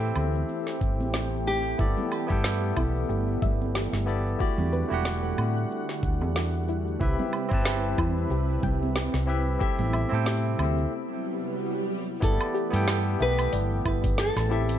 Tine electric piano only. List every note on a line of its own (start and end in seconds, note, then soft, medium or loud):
0.00 1.81 C4 medium
0.00 1.78 E4 medium
0.00 1.79 G4 medium
0.00 1.79 A4 medium
0.00 1.81 E5 medium
0.00 1.77 G5 loud
1.78 2.25 B3 medium
1.78 2.25 E4 medium
1.78 2.26 G4 medium
1.78 2.26 A4 medium
1.78 2.26 D5 loud
2.27 4.02 B3 medium
2.27 4.03 E4 medium
2.27 4.04 G4 medium
2.31 4.04 A4 medium
2.31 4.05 G5 loud
4.06 4.36 B3 medium
4.06 4.36 E4 medium
4.06 4.36 G4 medium
4.06 4.37 A4 medium
4.06 4.37 D5 medium
4.38 4.86 A3 medium
4.38 4.86 E4 medium
4.38 4.86 F#4 medium
4.38 4.87 G4 medium
4.38 4.87 D5 medium
4.88 6.96 A3 medium
4.88 6.97 E4 medium
4.88 6.98 F#4 medium
4.92 6.98 G4 medium
4.92 6.99 F#5 loud
6.99 7.47 C4 medium
6.99 7.47 E4 medium
6.99 7.47 G4 medium
6.99 7.48 B4 medium
6.99 7.48 E5 loud
7.49 9.24 C4 loud
7.49 9.25 E4 medium
7.49 9.26 G4 medium
7.53 9.26 B4 medium
7.53 9.27 A5 loud
9.26 9.57 C4 medium
9.26 9.57 E4 medium
9.26 9.58 G4 medium
9.26 9.58 B4 medium
9.26 9.58 E5 loud
9.59 10.07 C4 medium
9.59 10.07 E4 medium
9.59 10.08 G4 medium
9.59 10.08 A4 medium
9.59 10.08 E5 loud
10.09 10.89 C4 medium
10.09 10.89 E4 medium
10.09 10.90 G4 medium
10.13 10.91 A4 medium
10.13 10.91 G5 loud
12.20 12.68 B3 medium
12.20 12.68 E4 medium
12.20 12.69 G4 medium
12.20 12.69 A4 medium
12.20 12.69 D5 loud
12.70 14.46 B3 loud
12.70 14.47 E4 medium
12.70 14.47 G4 medium
12.74 14.48 A4 medium
12.74 14.49 G5 loud
14.49 14.79 C4 medium
14.49 14.79 E4 medium
14.49 14.79 G4 medium
14.49 14.79 A4 medium
14.49 14.79 E5 loud